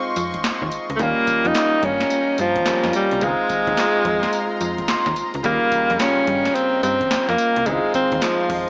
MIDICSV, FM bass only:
0, 0, Header, 1, 2, 480
1, 0, Start_track
1, 0, Tempo, 555556
1, 861, Time_signature, 4, 2, 24, 8
1, 7512, End_track
2, 0, Start_track
2, 0, Title_t, "FM bass"
2, 0, Program_c, 0, 39
2, 142, Note_on_c, 0, 41, 95
2, 330, Note_off_c, 0, 41, 0
2, 383, Note_on_c, 0, 39, 49
2, 444, Note_off_c, 0, 39, 0
2, 536, Note_on_c, 0, 39, 88
2, 603, Note_off_c, 0, 39, 0
2, 776, Note_on_c, 0, 37, 91
2, 843, Note_off_c, 0, 37, 0
2, 862, Note_on_c, 0, 39, 117
2, 982, Note_off_c, 0, 39, 0
2, 1253, Note_on_c, 0, 41, 97
2, 1321, Note_off_c, 0, 41, 0
2, 1582, Note_on_c, 0, 43, 97
2, 1769, Note_off_c, 0, 43, 0
2, 2066, Note_on_c, 0, 43, 90
2, 2251, Note_off_c, 0, 43, 0
2, 2305, Note_on_c, 0, 41, 50
2, 2366, Note_off_c, 0, 41, 0
2, 2456, Note_on_c, 0, 41, 98
2, 2523, Note_off_c, 0, 41, 0
2, 2698, Note_on_c, 0, 36, 84
2, 2764, Note_off_c, 0, 36, 0
2, 2782, Note_on_c, 0, 37, 120
2, 2902, Note_off_c, 0, 37, 0
2, 3175, Note_on_c, 0, 39, 94
2, 3243, Note_off_c, 0, 39, 0
2, 3500, Note_on_c, 0, 41, 96
2, 3688, Note_off_c, 0, 41, 0
2, 3982, Note_on_c, 0, 41, 96
2, 4170, Note_off_c, 0, 41, 0
2, 4224, Note_on_c, 0, 39, 52
2, 4285, Note_off_c, 0, 39, 0
2, 4376, Note_on_c, 0, 39, 92
2, 4443, Note_off_c, 0, 39, 0
2, 4620, Note_on_c, 0, 37, 95
2, 4685, Note_off_c, 0, 37, 0
2, 4703, Note_on_c, 0, 39, 123
2, 4823, Note_off_c, 0, 39, 0
2, 5100, Note_on_c, 0, 41, 97
2, 5166, Note_off_c, 0, 41, 0
2, 5423, Note_on_c, 0, 43, 96
2, 5610, Note_off_c, 0, 43, 0
2, 5906, Note_on_c, 0, 43, 97
2, 6092, Note_off_c, 0, 43, 0
2, 6147, Note_on_c, 0, 41, 49
2, 6207, Note_off_c, 0, 41, 0
2, 6299, Note_on_c, 0, 41, 98
2, 6365, Note_off_c, 0, 41, 0
2, 6540, Note_on_c, 0, 36, 91
2, 6606, Note_off_c, 0, 36, 0
2, 6623, Note_on_c, 0, 37, 119
2, 6743, Note_off_c, 0, 37, 0
2, 7018, Note_on_c, 0, 39, 94
2, 7084, Note_off_c, 0, 39, 0
2, 7342, Note_on_c, 0, 41, 109
2, 7512, Note_off_c, 0, 41, 0
2, 7512, End_track
0, 0, End_of_file